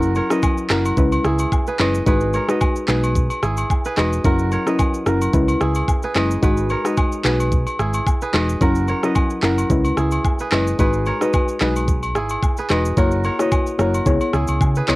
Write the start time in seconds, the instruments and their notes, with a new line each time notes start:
Already playing: fingered electric bass F#1, synth pluck F#3 C#4 E4 A#4, kora F#4 G#4 A#4 D#5, downlifter
0.02 shaker
0.15 kora A#4 C#5, high agogo, shaker
0.30 synth pluck F#3 C#4 E4 A#4, kora B4 D#5, cross-stick, shaker
0.43 kick, high agogo, low woodblock, shaker
0.58 shaker
0.70 fingered electric bass F#1, synth pluck F#3 C#4 E4 A#4, kora F#4 A#4, cross-stick, clap, shaker
0.85 high agogo, shaker
0.97 fingered electric bass C#2, synth pluck G#3 C#4 E4 B4, kick, shaker
1.12 high agogo, shaker
1.24 fingered electric bass C#2, kora E4 G#4, cross-stick, shaker
1.39 high agogo, shaker
1.52 kick, low woodblock, shaker
1.67 kora G#4 B4, shaker
1.79 fingered electric bass F#1, synth pluck G#3 C#4 E4 B4, kora B4 D#5, cross-stick, clap, high agogo, shaker
1.94 shaker
2.06 fingered electric bass G#1, synth pluck G#3 D#4 F#4 B4, kora G#4 B4, kick, high agogo, shaker
2.21 shaker
2.33 kora A#4 C#5, high agogo, shaker
2.48 synth pluck G#3 D#4 F#4 B4, kora B4 D#5, cross-stick, shaker
2.61 kick, high agogo, low woodblock, shaker
2.76 shaker
2.88 fingered electric bass B1, synth pluck G#3 D#4 F#4 B4, kora G#4 B4, cross-stick, clap, shaker
3.04 high agogo, shaker
3.15 kick, shaker
3.30 high agogo, shaker
3.43 fingered electric bass G#1, kora E4 G#4, cross-stick, shaker
3.57 high agogo, shaker
3.70 kick, low woodblock, shaker
3.85 kora G#4 B4, shaker
3.97 fingered electric bass E1, synth pluck G#3 D#4 F#4 B4, kora B4 D#5, cross-stick, clap, high agogo, shaker
4.13 shaker
4.24 fingered electric bass F#1, synth pluck F#3 C#4 E4 A#4, kora F#4 A#4, kick, high agogo, shaker
4.39 shaker
4.52 kora A#4 C#5, high agogo, shaker
4.66 synth pluck F#3 C#4 E4 A#4, kora B4 D#5, cross-stick, shaker
4.79 kick, high agogo, low woodblock, shaker
4.94 shaker
5.06 fingered electric bass F#1, synth pluck F#3 C#4 E4 A#4, kora F#4 A#4, cross-stick, shaker
5.21 high agogo, shaker
5.33 fingered electric bass C#2, synth pluck G#3 C#4 E4 B4, kick, shaker
5.48 high agogo, shaker
5.61 fingered electric bass C#2, kora E4 G#4, cross-stick, shaker
5.75 high agogo, shaker
5.88 kick, low woodblock, shaker
6.03 kora G#4 B4, shaker
6.15 fingered electric bass F#1, synth pluck G#3 C#4 E4 B4, kora B4 D#5, cross-stick, clap, high agogo, shaker
6.31 shaker
6.42 fingered electric bass G#1, synth pluck G#3 D#4 F#4 B4, kora G#4 B4, kick, high agogo, shaker
6.57 shaker
6.70 kora A#4 C#5, high agogo, shaker
6.84 synth pluck G#3 D#4 F#4 B4, kora B4 D#5, cross-stick, shaker
6.97 kick, high agogo, low woodblock, shaker
7.12 shaker
7.24 fingered electric bass B1, synth pluck G#3 D#4 F#4 B4, kora G#4 B4, cross-stick, clap, shaker
7.40 high agogo, shaker
7.52 kick, shaker
7.67 high agogo, shaker
7.79 fingered electric bass G#1, kora E4 G#4, cross-stick, shaker
7.94 high agogo, shaker
8.07 kick, low woodblock, shaker
8.21 kora G#4 B4, shaker
8.33 fingered electric bass E1, synth pluck G#3 D#4 F#4 B4, kora B4 D#5, cross-stick, clap, high agogo, shaker
8.49 shaker
8.61 fingered electric bass F#1, synth pluck F#3 C#4 E4 A#4, kora F#4 A#4, kick, high agogo, shaker
8.75 shaker
8.88 kora A#4 C#5, high agogo, shaker
9.03 synth pluck F#3 C#4 E4 A#4, kora B4 D#5, cross-stick, shaker
9.15 kick, high agogo, low woodblock, shaker
9.30 shaker
9.43 fingered electric bass F#1, synth pluck F#3 C#4 E4 A#4, kora F#4 A#4, cross-stick, clap, shaker
9.58 high agogo, shaker
9.70 fingered electric bass C#2, synth pluck G#3 C#4 E4 B4, kick, shaker
9.85 high agogo, shaker
9.97 fingered electric bass C#2, kora E4 G#4, cross-stick, shaker
10.11 high agogo, shaker
10.25 kick, low woodblock, shaker
10.39 kora G#4 B4, shaker
10.51 fingered electric bass F#1, synth pluck G#3 C#4 E4 B4, kora B4 D#5, cross-stick, clap, high agogo, shaker
10.67 shaker
10.79 fingered electric bass G#1, synth pluck G#3 D#4 F#4 B4, kora G#4 B4, kick, high agogo, shaker
10.93 shaker
11.06 kora A#4 C#5, high agogo, shaker
11.21 synth pluck G#3 D#4 F#4 B4, kora B4 D#5, cross-stick, shaker
11.33 kick, high agogo, low woodblock, shaker
11.48 shaker
11.61 fingered electric bass B1, synth pluck G#3 D#4 F#4 B4, kora G#4 B4, cross-stick, clap, shaker
11.76 high agogo, shaker
11.88 kick, shaker
12.03 high agogo, shaker
12.15 fingered electric bass G#1, kora E4 G#4, cross-stick, shaker
12.29 high agogo, shaker
12.43 kick, low woodblock, shaker
12.57 kora G#4 B4, shaker
12.69 fingered electric bass E1, synth pluck G#3 D#4 F#4 B4, kora B4 D#5, cross-stick, clap, high agogo, shaker
12.85 shaker
12.97 fingered electric bass F#1, synth pluck A#3 E4 F#4 C#5, kora F#4 A#4, kick, high agogo, shaker
13.11 shaker
13.24 kora A#4 C#5, high agogo, shaker
13.39 synth pluck A#3 E4 F#4 C#5, kora B4 D#5, cross-stick, shaker
13.52 kick, high agogo, low woodblock, shaker
13.67 shaker
13.78 fingered electric bass F#1, synth pluck A#3 E4 F#4 C#5, kora F#4 A#4, cross-stick, shaker
13.94 high agogo, shaker
14.06 fingered electric bass C#2, synth pluck B3 E4 G#4 C#5, kick, shaker
14.21 high agogo, shaker
14.33 fingered electric bass C#2, kora E4 G#4, cross-stick, shaker
14.47 fingered electric bass C#2, high agogo, shaker
14.61 fingered electric bass C#3, kick, low woodblock, shaker
14.75 kora G#4 B4, shaker
14.88 fingered electric bass C#2, synth pluck B3 E4 G#4 C#5, kora B4 D#5, cross-stick, clap, high agogo, shaker